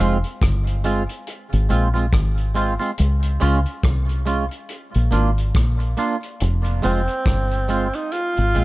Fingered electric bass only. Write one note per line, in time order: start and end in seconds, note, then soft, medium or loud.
0.00 0.22 F1 medium
0.42 1.06 G1 loud
1.53 1.69 G#1 loud
1.71 2.10 A#1 medium
2.13 2.77 G#1 medium
3.00 3.38 C#2 medium
3.42 3.65 C#2 medium
3.84 4.48 C2 medium
4.95 5.11 A#1 medium
5.13 5.52 G#1 medium
5.55 5.94 A#1 medium
6.42 6.80 F1 loud
6.85 7.07 F1 medium
7.27 7.90 G1 medium
8.38 8.54 G#1 medium
8.56 8.64 A#1 medium